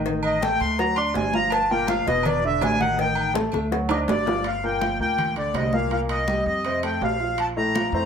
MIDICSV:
0, 0, Header, 1, 5, 480
1, 0, Start_track
1, 0, Key_signature, -2, "minor"
1, 0, Tempo, 365854
1, 81, Time_signature, 4, 2, 24, 8
1, 10566, End_track
2, 0, Start_track
2, 0, Title_t, "Accordion"
2, 0, Program_c, 0, 21
2, 328, Note_on_c, 0, 75, 86
2, 551, Note_on_c, 0, 79, 93
2, 557, Note_off_c, 0, 75, 0
2, 789, Note_off_c, 0, 79, 0
2, 792, Note_on_c, 0, 84, 127
2, 1029, Note_off_c, 0, 84, 0
2, 1039, Note_on_c, 0, 82, 99
2, 1263, Note_on_c, 0, 84, 120
2, 1272, Note_off_c, 0, 82, 0
2, 1504, Note_off_c, 0, 84, 0
2, 1528, Note_on_c, 0, 80, 90
2, 1752, Note_on_c, 0, 82, 117
2, 1756, Note_off_c, 0, 80, 0
2, 1988, Note_off_c, 0, 82, 0
2, 2003, Note_on_c, 0, 81, 97
2, 2234, Note_off_c, 0, 81, 0
2, 2237, Note_on_c, 0, 79, 103
2, 2471, Note_off_c, 0, 79, 0
2, 2472, Note_on_c, 0, 77, 92
2, 2708, Note_off_c, 0, 77, 0
2, 2721, Note_on_c, 0, 75, 101
2, 2953, Note_off_c, 0, 75, 0
2, 2983, Note_on_c, 0, 74, 86
2, 3203, Note_off_c, 0, 74, 0
2, 3225, Note_on_c, 0, 76, 96
2, 3445, Note_off_c, 0, 76, 0
2, 3469, Note_on_c, 0, 80, 111
2, 3687, Note_off_c, 0, 80, 0
2, 3687, Note_on_c, 0, 78, 113
2, 3915, Note_off_c, 0, 78, 0
2, 3938, Note_on_c, 0, 79, 100
2, 4374, Note_off_c, 0, 79, 0
2, 5142, Note_on_c, 0, 75, 80
2, 5245, Note_off_c, 0, 75, 0
2, 5384, Note_on_c, 0, 74, 94
2, 5856, Note_on_c, 0, 77, 84
2, 5865, Note_off_c, 0, 74, 0
2, 6094, Note_off_c, 0, 77, 0
2, 6096, Note_on_c, 0, 79, 86
2, 6535, Note_off_c, 0, 79, 0
2, 6571, Note_on_c, 0, 79, 96
2, 7012, Note_off_c, 0, 79, 0
2, 7063, Note_on_c, 0, 74, 75
2, 7275, Note_off_c, 0, 74, 0
2, 7294, Note_on_c, 0, 75, 75
2, 7524, Note_on_c, 0, 77, 82
2, 7534, Note_off_c, 0, 75, 0
2, 7750, Note_off_c, 0, 77, 0
2, 7770, Note_on_c, 0, 77, 85
2, 7876, Note_off_c, 0, 77, 0
2, 8008, Note_on_c, 0, 75, 87
2, 8451, Note_off_c, 0, 75, 0
2, 8483, Note_on_c, 0, 75, 92
2, 8929, Note_off_c, 0, 75, 0
2, 8986, Note_on_c, 0, 79, 77
2, 9221, Note_off_c, 0, 79, 0
2, 9228, Note_on_c, 0, 77, 85
2, 9707, Note_on_c, 0, 81, 88
2, 9710, Note_off_c, 0, 77, 0
2, 9810, Note_off_c, 0, 81, 0
2, 9937, Note_on_c, 0, 82, 96
2, 10403, Note_off_c, 0, 82, 0
2, 10422, Note_on_c, 0, 82, 97
2, 10566, Note_off_c, 0, 82, 0
2, 10566, End_track
3, 0, Start_track
3, 0, Title_t, "Grand piano"
3, 0, Program_c, 1, 0
3, 75, Note_on_c, 1, 51, 84
3, 78, Note_on_c, 1, 63, 84
3, 82, Note_on_c, 1, 75, 84
3, 471, Note_off_c, 1, 51, 0
3, 472, Note_off_c, 1, 63, 0
3, 475, Note_off_c, 1, 75, 0
3, 563, Note_on_c, 1, 57, 80
3, 564, Note_on_c, 1, 69, 83
3, 569, Note_on_c, 1, 81, 78
3, 955, Note_off_c, 1, 57, 0
3, 956, Note_off_c, 1, 69, 0
3, 959, Note_off_c, 1, 81, 0
3, 1040, Note_on_c, 1, 54, 79
3, 1041, Note_on_c, 1, 66, 78
3, 1043, Note_on_c, 1, 78, 78
3, 1237, Note_off_c, 1, 54, 0
3, 1237, Note_off_c, 1, 66, 0
3, 1238, Note_off_c, 1, 78, 0
3, 1272, Note_on_c, 1, 62, 75
3, 1274, Note_on_c, 1, 74, 80
3, 1283, Note_on_c, 1, 86, 74
3, 1668, Note_off_c, 1, 62, 0
3, 1670, Note_off_c, 1, 74, 0
3, 1675, Note_off_c, 1, 86, 0
3, 1753, Note_on_c, 1, 53, 85
3, 1758, Note_on_c, 1, 65, 84
3, 1767, Note_on_c, 1, 77, 80
3, 2149, Note_off_c, 1, 53, 0
3, 2152, Note_off_c, 1, 65, 0
3, 2157, Note_off_c, 1, 77, 0
3, 2245, Note_on_c, 1, 46, 103
3, 2246, Note_on_c, 1, 58, 95
3, 2251, Note_on_c, 1, 70, 103
3, 2439, Note_off_c, 1, 46, 0
3, 2440, Note_off_c, 1, 58, 0
3, 2443, Note_off_c, 1, 70, 0
3, 2480, Note_on_c, 1, 53, 81
3, 2485, Note_on_c, 1, 65, 82
3, 2488, Note_on_c, 1, 77, 75
3, 2676, Note_off_c, 1, 53, 0
3, 2679, Note_off_c, 1, 65, 0
3, 2681, Note_off_c, 1, 77, 0
3, 2726, Note_on_c, 1, 47, 92
3, 2729, Note_on_c, 1, 59, 92
3, 2738, Note_on_c, 1, 71, 89
3, 3116, Note_off_c, 1, 47, 0
3, 3118, Note_off_c, 1, 59, 0
3, 3123, Note_off_c, 1, 71, 0
3, 3205, Note_on_c, 1, 50, 82
3, 3208, Note_on_c, 1, 62, 82
3, 3214, Note_on_c, 1, 74, 79
3, 3596, Note_off_c, 1, 50, 0
3, 3597, Note_off_c, 1, 62, 0
3, 3601, Note_off_c, 1, 74, 0
3, 3673, Note_on_c, 1, 51, 92
3, 3677, Note_on_c, 1, 63, 89
3, 3684, Note_on_c, 1, 75, 98
3, 3871, Note_off_c, 1, 51, 0
3, 3874, Note_off_c, 1, 63, 0
3, 3878, Note_off_c, 1, 75, 0
3, 3910, Note_on_c, 1, 51, 84
3, 3915, Note_on_c, 1, 63, 86
3, 3917, Note_on_c, 1, 75, 84
3, 4307, Note_off_c, 1, 51, 0
3, 4309, Note_off_c, 1, 63, 0
3, 4311, Note_off_c, 1, 75, 0
3, 4389, Note_on_c, 1, 57, 77
3, 4391, Note_on_c, 1, 69, 80
3, 4394, Note_on_c, 1, 81, 82
3, 4786, Note_off_c, 1, 57, 0
3, 4787, Note_off_c, 1, 69, 0
3, 4789, Note_off_c, 1, 81, 0
3, 4871, Note_on_c, 1, 54, 80
3, 4876, Note_on_c, 1, 78, 75
3, 4878, Note_on_c, 1, 66, 78
3, 5070, Note_off_c, 1, 54, 0
3, 5073, Note_off_c, 1, 78, 0
3, 5075, Note_off_c, 1, 66, 0
3, 5121, Note_on_c, 1, 62, 83
3, 5126, Note_on_c, 1, 74, 75
3, 5132, Note_on_c, 1, 86, 80
3, 5513, Note_off_c, 1, 62, 0
3, 5516, Note_off_c, 1, 74, 0
3, 5520, Note_off_c, 1, 86, 0
3, 5605, Note_on_c, 1, 53, 82
3, 5610, Note_on_c, 1, 77, 82
3, 5612, Note_on_c, 1, 65, 84
3, 5799, Note_off_c, 1, 53, 0
3, 5802, Note_off_c, 1, 77, 0
3, 5803, Note_off_c, 1, 65, 0
3, 6081, Note_on_c, 1, 46, 86
3, 6084, Note_on_c, 1, 58, 84
3, 6088, Note_on_c, 1, 70, 86
3, 6276, Note_off_c, 1, 46, 0
3, 6278, Note_off_c, 1, 58, 0
3, 6280, Note_off_c, 1, 70, 0
3, 6317, Note_on_c, 1, 53, 71
3, 6323, Note_on_c, 1, 65, 68
3, 6327, Note_on_c, 1, 77, 67
3, 6515, Note_off_c, 1, 53, 0
3, 6518, Note_off_c, 1, 65, 0
3, 6520, Note_off_c, 1, 77, 0
3, 6557, Note_on_c, 1, 46, 76
3, 6560, Note_on_c, 1, 58, 79
3, 6563, Note_on_c, 1, 70, 75
3, 6951, Note_off_c, 1, 46, 0
3, 6954, Note_off_c, 1, 58, 0
3, 6955, Note_off_c, 1, 70, 0
3, 7032, Note_on_c, 1, 50, 70
3, 7037, Note_on_c, 1, 62, 65
3, 7042, Note_on_c, 1, 74, 71
3, 7429, Note_off_c, 1, 50, 0
3, 7432, Note_off_c, 1, 62, 0
3, 7435, Note_off_c, 1, 74, 0
3, 7521, Note_on_c, 1, 46, 84
3, 7527, Note_on_c, 1, 58, 83
3, 7531, Note_on_c, 1, 70, 79
3, 7717, Note_off_c, 1, 46, 0
3, 7721, Note_off_c, 1, 58, 0
3, 7723, Note_off_c, 1, 70, 0
3, 7752, Note_on_c, 1, 46, 76
3, 7757, Note_on_c, 1, 58, 75
3, 7759, Note_on_c, 1, 70, 77
3, 8149, Note_off_c, 1, 46, 0
3, 8152, Note_off_c, 1, 58, 0
3, 8154, Note_off_c, 1, 70, 0
3, 8241, Note_on_c, 1, 55, 70
3, 8249, Note_on_c, 1, 67, 71
3, 8250, Note_on_c, 1, 79, 71
3, 8635, Note_off_c, 1, 55, 0
3, 8640, Note_off_c, 1, 67, 0
3, 8640, Note_off_c, 1, 79, 0
3, 8731, Note_on_c, 1, 48, 66
3, 8731, Note_on_c, 1, 60, 66
3, 8735, Note_on_c, 1, 72, 70
3, 8924, Note_off_c, 1, 48, 0
3, 8924, Note_off_c, 1, 60, 0
3, 8927, Note_off_c, 1, 72, 0
3, 8965, Note_on_c, 1, 57, 74
3, 8966, Note_on_c, 1, 69, 69
3, 8971, Note_on_c, 1, 81, 70
3, 9358, Note_off_c, 1, 57, 0
3, 9359, Note_off_c, 1, 69, 0
3, 9361, Note_off_c, 1, 81, 0
3, 9440, Note_on_c, 1, 53, 71
3, 9448, Note_on_c, 1, 65, 72
3, 9450, Note_on_c, 1, 77, 73
3, 9835, Note_off_c, 1, 53, 0
3, 9840, Note_off_c, 1, 65, 0
3, 9841, Note_off_c, 1, 77, 0
3, 9926, Note_on_c, 1, 45, 87
3, 9928, Note_on_c, 1, 57, 89
3, 9934, Note_on_c, 1, 69, 87
3, 10122, Note_off_c, 1, 45, 0
3, 10123, Note_off_c, 1, 57, 0
3, 10127, Note_off_c, 1, 69, 0
3, 10178, Note_on_c, 1, 53, 71
3, 10183, Note_on_c, 1, 65, 70
3, 10187, Note_on_c, 1, 77, 70
3, 10369, Note_off_c, 1, 53, 0
3, 10373, Note_off_c, 1, 65, 0
3, 10374, Note_off_c, 1, 77, 0
3, 10415, Note_on_c, 1, 45, 81
3, 10419, Note_on_c, 1, 57, 85
3, 10420, Note_on_c, 1, 72, 87
3, 10566, Note_off_c, 1, 45, 0
3, 10566, Note_off_c, 1, 57, 0
3, 10566, Note_off_c, 1, 72, 0
3, 10566, End_track
4, 0, Start_track
4, 0, Title_t, "Upright bass"
4, 0, Program_c, 2, 32
4, 0, Note_on_c, 2, 33, 90
4, 721, Note_off_c, 2, 33, 0
4, 794, Note_on_c, 2, 38, 99
4, 1466, Note_off_c, 2, 38, 0
4, 1515, Note_on_c, 2, 31, 95
4, 2640, Note_off_c, 2, 31, 0
4, 2715, Note_on_c, 2, 28, 98
4, 3386, Note_off_c, 2, 28, 0
4, 3425, Note_on_c, 2, 33, 97
4, 4555, Note_off_c, 2, 33, 0
4, 4631, Note_on_c, 2, 38, 98
4, 5304, Note_off_c, 2, 38, 0
4, 5361, Note_on_c, 2, 31, 97
4, 6483, Note_off_c, 2, 31, 0
4, 6548, Note_on_c, 2, 38, 83
4, 7223, Note_off_c, 2, 38, 0
4, 7265, Note_on_c, 2, 36, 83
4, 8398, Note_off_c, 2, 36, 0
4, 8474, Note_on_c, 2, 41, 87
4, 9148, Note_off_c, 2, 41, 0
4, 9197, Note_on_c, 2, 34, 83
4, 10325, Note_off_c, 2, 34, 0
4, 10392, Note_on_c, 2, 41, 95
4, 10566, Note_off_c, 2, 41, 0
4, 10566, End_track
5, 0, Start_track
5, 0, Title_t, "Drums"
5, 74, Note_on_c, 9, 56, 112
5, 205, Note_off_c, 9, 56, 0
5, 298, Note_on_c, 9, 68, 112
5, 331, Note_on_c, 9, 63, 38
5, 429, Note_off_c, 9, 68, 0
5, 462, Note_off_c, 9, 63, 0
5, 538, Note_on_c, 9, 66, 64
5, 556, Note_on_c, 9, 56, 73
5, 560, Note_on_c, 9, 63, 104
5, 670, Note_off_c, 9, 66, 0
5, 687, Note_off_c, 9, 56, 0
5, 691, Note_off_c, 9, 63, 0
5, 788, Note_on_c, 9, 68, 70
5, 802, Note_on_c, 9, 63, 35
5, 919, Note_off_c, 9, 68, 0
5, 933, Note_off_c, 9, 63, 0
5, 1037, Note_on_c, 9, 56, 106
5, 1046, Note_on_c, 9, 63, 36
5, 1168, Note_off_c, 9, 56, 0
5, 1178, Note_off_c, 9, 63, 0
5, 1262, Note_on_c, 9, 68, 108
5, 1279, Note_on_c, 9, 63, 35
5, 1393, Note_off_c, 9, 68, 0
5, 1410, Note_off_c, 9, 63, 0
5, 1498, Note_on_c, 9, 66, 90
5, 1513, Note_on_c, 9, 56, 69
5, 1513, Note_on_c, 9, 63, 86
5, 1630, Note_off_c, 9, 66, 0
5, 1644, Note_off_c, 9, 56, 0
5, 1644, Note_off_c, 9, 63, 0
5, 1750, Note_on_c, 9, 63, 89
5, 1882, Note_off_c, 9, 63, 0
5, 1973, Note_on_c, 9, 68, 110
5, 1995, Note_on_c, 9, 56, 115
5, 1998, Note_on_c, 9, 63, 38
5, 2104, Note_off_c, 9, 68, 0
5, 2126, Note_off_c, 9, 56, 0
5, 2129, Note_off_c, 9, 63, 0
5, 2233, Note_on_c, 9, 63, 37
5, 2364, Note_off_c, 9, 63, 0
5, 2454, Note_on_c, 9, 66, 67
5, 2454, Note_on_c, 9, 68, 92
5, 2468, Note_on_c, 9, 63, 112
5, 2480, Note_on_c, 9, 56, 72
5, 2586, Note_off_c, 9, 66, 0
5, 2586, Note_off_c, 9, 68, 0
5, 2599, Note_off_c, 9, 63, 0
5, 2612, Note_off_c, 9, 56, 0
5, 2708, Note_on_c, 9, 63, 36
5, 2722, Note_on_c, 9, 56, 79
5, 2839, Note_off_c, 9, 63, 0
5, 2854, Note_off_c, 9, 56, 0
5, 2928, Note_on_c, 9, 68, 110
5, 2957, Note_on_c, 9, 63, 35
5, 2957, Note_on_c, 9, 64, 90
5, 2966, Note_on_c, 9, 56, 106
5, 3059, Note_off_c, 9, 68, 0
5, 3088, Note_off_c, 9, 63, 0
5, 3088, Note_off_c, 9, 64, 0
5, 3097, Note_off_c, 9, 56, 0
5, 3204, Note_on_c, 9, 63, 38
5, 3335, Note_off_c, 9, 63, 0
5, 3430, Note_on_c, 9, 66, 94
5, 3430, Note_on_c, 9, 68, 116
5, 3440, Note_on_c, 9, 56, 76
5, 3450, Note_on_c, 9, 63, 92
5, 3562, Note_off_c, 9, 66, 0
5, 3562, Note_off_c, 9, 68, 0
5, 3572, Note_off_c, 9, 56, 0
5, 3581, Note_off_c, 9, 63, 0
5, 3656, Note_on_c, 9, 68, 87
5, 3681, Note_on_c, 9, 63, 87
5, 3787, Note_off_c, 9, 68, 0
5, 3812, Note_off_c, 9, 63, 0
5, 3920, Note_on_c, 9, 56, 108
5, 3921, Note_on_c, 9, 63, 36
5, 4051, Note_off_c, 9, 56, 0
5, 4052, Note_off_c, 9, 63, 0
5, 4138, Note_on_c, 9, 68, 114
5, 4164, Note_on_c, 9, 63, 38
5, 4269, Note_off_c, 9, 68, 0
5, 4295, Note_off_c, 9, 63, 0
5, 4380, Note_on_c, 9, 66, 67
5, 4400, Note_on_c, 9, 63, 101
5, 4401, Note_on_c, 9, 56, 78
5, 4401, Note_on_c, 9, 60, 104
5, 4511, Note_off_c, 9, 66, 0
5, 4531, Note_off_c, 9, 63, 0
5, 4533, Note_off_c, 9, 56, 0
5, 4533, Note_off_c, 9, 60, 0
5, 4614, Note_on_c, 9, 68, 73
5, 4640, Note_on_c, 9, 63, 36
5, 4644, Note_on_c, 9, 60, 81
5, 4746, Note_off_c, 9, 68, 0
5, 4771, Note_off_c, 9, 63, 0
5, 4775, Note_off_c, 9, 60, 0
5, 4883, Note_on_c, 9, 56, 106
5, 4883, Note_on_c, 9, 60, 81
5, 4884, Note_on_c, 9, 63, 35
5, 5014, Note_off_c, 9, 56, 0
5, 5014, Note_off_c, 9, 60, 0
5, 5015, Note_off_c, 9, 63, 0
5, 5102, Note_on_c, 9, 65, 107
5, 5102, Note_on_c, 9, 68, 116
5, 5120, Note_on_c, 9, 63, 35
5, 5127, Note_on_c, 9, 61, 98
5, 5233, Note_off_c, 9, 65, 0
5, 5233, Note_off_c, 9, 68, 0
5, 5251, Note_off_c, 9, 63, 0
5, 5258, Note_off_c, 9, 61, 0
5, 5353, Note_on_c, 9, 66, 90
5, 5356, Note_on_c, 9, 63, 88
5, 5369, Note_on_c, 9, 56, 74
5, 5369, Note_on_c, 9, 61, 98
5, 5484, Note_off_c, 9, 66, 0
5, 5487, Note_off_c, 9, 63, 0
5, 5500, Note_off_c, 9, 56, 0
5, 5500, Note_off_c, 9, 61, 0
5, 5594, Note_on_c, 9, 66, 87
5, 5604, Note_on_c, 9, 63, 94
5, 5609, Note_on_c, 9, 61, 93
5, 5725, Note_off_c, 9, 66, 0
5, 5735, Note_off_c, 9, 63, 0
5, 5740, Note_off_c, 9, 61, 0
5, 5829, Note_on_c, 9, 65, 91
5, 5845, Note_on_c, 9, 63, 33
5, 5961, Note_off_c, 9, 65, 0
5, 5977, Note_off_c, 9, 63, 0
5, 6081, Note_on_c, 9, 63, 35
5, 6213, Note_off_c, 9, 63, 0
5, 6314, Note_on_c, 9, 65, 69
5, 6314, Note_on_c, 9, 66, 60
5, 6318, Note_on_c, 9, 63, 94
5, 6445, Note_off_c, 9, 65, 0
5, 6445, Note_off_c, 9, 66, 0
5, 6449, Note_off_c, 9, 63, 0
5, 6559, Note_on_c, 9, 63, 32
5, 6690, Note_off_c, 9, 63, 0
5, 6796, Note_on_c, 9, 63, 33
5, 6796, Note_on_c, 9, 64, 75
5, 6802, Note_on_c, 9, 65, 88
5, 6927, Note_off_c, 9, 63, 0
5, 6927, Note_off_c, 9, 64, 0
5, 6934, Note_off_c, 9, 65, 0
5, 7034, Note_on_c, 9, 65, 67
5, 7040, Note_on_c, 9, 63, 32
5, 7166, Note_off_c, 9, 65, 0
5, 7171, Note_off_c, 9, 63, 0
5, 7270, Note_on_c, 9, 63, 84
5, 7276, Note_on_c, 9, 65, 92
5, 7276, Note_on_c, 9, 66, 81
5, 7402, Note_off_c, 9, 63, 0
5, 7408, Note_off_c, 9, 65, 0
5, 7408, Note_off_c, 9, 66, 0
5, 7514, Note_on_c, 9, 63, 81
5, 7645, Note_off_c, 9, 63, 0
5, 7755, Note_on_c, 9, 63, 35
5, 7755, Note_on_c, 9, 65, 66
5, 7886, Note_off_c, 9, 63, 0
5, 7886, Note_off_c, 9, 65, 0
5, 7994, Note_on_c, 9, 65, 91
5, 7995, Note_on_c, 9, 63, 37
5, 8125, Note_off_c, 9, 65, 0
5, 8126, Note_off_c, 9, 63, 0
5, 8234, Note_on_c, 9, 66, 60
5, 8236, Note_on_c, 9, 63, 101
5, 8365, Note_off_c, 9, 66, 0
5, 8367, Note_off_c, 9, 63, 0
5, 8478, Note_on_c, 9, 63, 31
5, 8609, Note_off_c, 9, 63, 0
5, 8718, Note_on_c, 9, 65, 66
5, 8720, Note_on_c, 9, 63, 34
5, 8849, Note_off_c, 9, 65, 0
5, 8852, Note_off_c, 9, 63, 0
5, 8963, Note_on_c, 9, 65, 89
5, 8966, Note_on_c, 9, 63, 33
5, 9094, Note_off_c, 9, 65, 0
5, 9097, Note_off_c, 9, 63, 0
5, 9207, Note_on_c, 9, 63, 35
5, 9208, Note_on_c, 9, 66, 83
5, 9338, Note_off_c, 9, 63, 0
5, 9340, Note_off_c, 9, 66, 0
5, 9444, Note_on_c, 9, 63, 34
5, 9575, Note_off_c, 9, 63, 0
5, 9682, Note_on_c, 9, 65, 88
5, 9687, Note_on_c, 9, 63, 34
5, 9813, Note_off_c, 9, 65, 0
5, 9818, Note_off_c, 9, 63, 0
5, 9935, Note_on_c, 9, 63, 33
5, 10066, Note_off_c, 9, 63, 0
5, 10169, Note_on_c, 9, 65, 72
5, 10169, Note_on_c, 9, 66, 61
5, 10175, Note_on_c, 9, 63, 98
5, 10300, Note_off_c, 9, 65, 0
5, 10300, Note_off_c, 9, 66, 0
5, 10306, Note_off_c, 9, 63, 0
5, 10423, Note_on_c, 9, 63, 32
5, 10554, Note_off_c, 9, 63, 0
5, 10566, End_track
0, 0, End_of_file